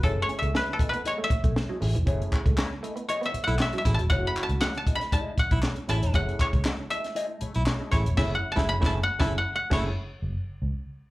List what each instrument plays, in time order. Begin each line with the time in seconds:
Already playing: koto B4
0.03 fingered electric bass F#1, clean electric guitar A3 E4 G#4 C#5, reed electric piano A3 C#4 E4 G#4, koto A4, kick, closed hi-hat
0.17 muted clean electric guitar stroke
0.22 koto C#5
0.29 clean electric guitar C#4, closed hi-hat
0.39 fingered electric bass C#2, clean electric guitar A3, koto E5, closed hi-hat
0.54 clean electric guitar A3 E4 G#4 D#5, koto B4, muted clean electric guitar stroke, snare
0.67 muted clean electric guitar stroke
0.73 koto A4
0.79 clean electric guitar A3 E4 G#4 D#5, kick, closed hi-hat
0.89 clean electric guitar B3, koto B4, muted clean electric guitar stroke
0.93 closed hi-hat
1.05 clean electric guitar A3 E4 G#4 D#5, koto C#5, closed hi-hat
1.18 clean electric guitar A3
1.24 koto E5
1.30 muted fingered electric bass stroke, muted clean electric guitar stroke, kick, closed hi-hat
1.44 fingered electric bass B1, clean electric guitar A3 E4 G#4 C#5, kick, closed hi-hat
1.56 muted clean electric guitar stroke, snare
1.69 clean electric guitar F#3 A3 E4 G#4 D#5
1.80 fingered electric bass A1, reed electric piano A3 C#4 E4 G#4, muted clean electric guitar stroke, snare, open hi-hat
1.95 fingered electric bass E1, clean electric guitar E3, muted clean electric guitar stroke, closed hi-hat
2.06 fingered electric bass F#1, clean electric guitar A3 E4 G#4 C#5, reed electric piano A3 C#4 E4 G#4, kick, closed hi-hat
2.20 muted clean electric guitar stroke, closed hi-hat
2.32 clean electric guitar C#4, kick, clap, closed hi-hat
2.45 fingered electric bass C#2, clean electric guitar A3, muted clean electric guitar stroke, kick, closed hi-hat
2.58 clean electric guitar A3 E4 G#4 D#5, muted clean electric guitar stroke, snare, clap
2.71 muted clean electric guitar stroke
2.82 clean electric guitar A3 E4 G#4 D#5, closed hi-hat
2.96 clean electric guitar B3, muted clean electric guitar stroke, closed hi-hat
3.08 clean electric guitar A3 E4 G#4 D#5, koto C#5, closed hi-hat
3.21 clean electric guitar B3, closed hi-hat
3.25 koto E5
3.34 muted clean electric guitar stroke, muted fingered electric bass stroke, closed hi-hat
3.44 fingered electric bass B1, baritone saxophone E4, koto F#5, closed hi-hat
3.48 clean electric guitar A3 E4 G#4 C#5
3.59 koto E5, snare, clap
3.72 clean electric guitar F#3 A3 E4 G#4 D#5, closed hi-hat
3.78 koto E5
3.85 fingered electric bass A1, reed electric piano A3 C#4 E4 G#4, baritone saxophone E4, muted clean electric guitar stroke, kick, snare, closed hi-hat
3.94 clean electric guitar F#3, koto A5
3.98 fingered electric bass E1, muted clean electric guitar stroke, closed hi-hat
4.10 fingered electric bass F#1, reed electric piano A3 C#4 E4 F4, clean electric guitar A3 E4 G#4 C#5, koto F#5, kick, closed hi-hat
4.18 reed electric piano F#4
4.27 koto B5
4.36 clap, closed hi-hat
4.43 koto A5
4.49 fingered electric bass C#2, muted clean electric guitar stroke, closed hi-hat
4.61 clean electric guitar A3 E4 G#4 D#5, koto F#5, snare, clap
4.74 koto A5, muted clean electric guitar stroke, closed hi-hat
4.86 clean electric guitar A3 E4 G#4 D#5, kick, closed hi-hat
4.95 koto B5, muted clean electric guitar stroke
5.01 snare, closed hi-hat
5.12 clean electric guitar A3 E4 G#4 D#5, koto A5, kick, closed hi-hat
5.38 koto F#5, muted fingered electric bass stroke, muted clean electric guitar stroke, kick, closed hi-hat
5.51 fingered electric bass B1, clean electric guitar A3 E4 G#4 C#5, baritone saxophone E4, kick, closed hi-hat
5.62 snare, clap
5.76 muted clean electric guitar stroke, closed hi-hat
5.87 fingered electric bass A1, reed electric piano A3 C#4 E4 G#4, clean electric guitar A3 E4 G#4 C#5, baritone saxophone E4, koto A5, snare, closed hi-hat
6.02 fingered electric bass E1, clean electric guitar A3 E4 G#4 C#5, closed hi-hat
6.13 fingered electric bass F#1, reed electric piano G#3 C#4 E4 G#4, clean electric guitar A3 E4 G#4 C#5, koto F#5, kick, closed hi-hat
6.19 reed electric piano A3
6.29 closed hi-hat
6.39 koto C#5, kick, clap, closed hi-hat
6.53 fingered electric bass C#2, kick, closed hi-hat
6.64 clean electric guitar A3 E4 G#4 D#5, snare, clap
6.77 muted clean electric guitar stroke
6.90 clean electric guitar A3 E4 G#4 D#5, koto E5, closed hi-hat
7.03 muted clean electric guitar stroke, snare, closed hi-hat
7.15 clean electric guitar A3 E4 G#4 D#5, closed hi-hat
7.29 muted clean electric guitar stroke
7.40 clean electric guitar A3 E4 G#4 C#5, muted fingered electric bass stroke, closed hi-hat
7.54 fingered electric bass B1, baritone saxophone E4, muted clean electric guitar stroke, closed hi-hat
7.66 snare, clap
7.79 clean electric guitar A3 E4 G#4 D#5
7.91 fingered electric bass A1, reed electric piano A3 C#4 E4 G#4, baritone saxophone E4, koto C#5, kick, snare, closed hi-hat
8.05 fingered electric bass E1, muted clean electric guitar stroke, closed hi-hat
8.17 fingered electric bass F#1, clean electric guitar A3 E4 G#4 C#5, reed electric piano A3 C#4 E4 G#4, baritone saxophone E4, koto E5, kick, snare, crash
8.35 koto F#5
8.52 reed electric piano A3, koto A5
8.56 fingered electric bass F#1, clean electric guitar A3 E4 G#4, reed electric piano C#4 E4 G#4, baritone saxophone E4, kick, snare
8.69 koto B5
8.81 fingered electric bass F#1, reed electric piano A3 C#4 E4 G#4, clean electric guitar A3 E4 G#4, baritone saxophone E4, kick, snare
8.86 koto A5
9.03 koto F#5
9.19 fingered electric bass F#1, clean electric guitar A3 E4 G#4, reed electric piano A3 C#4 E4 G#4, baritone saxophone E4, koto A5, kick, snare
9.38 koto F#5
9.56 koto F#5
9.70 fingered electric bass F#1, reed electric piano A3 C#4 E4 G#4, clean electric guitar A3 E4 G#4 C#5, baritone saxophone E4, koto C#5, kick, snare, crash
10.22 fingered electric bass F#1
10.62 fingered electric bass C#2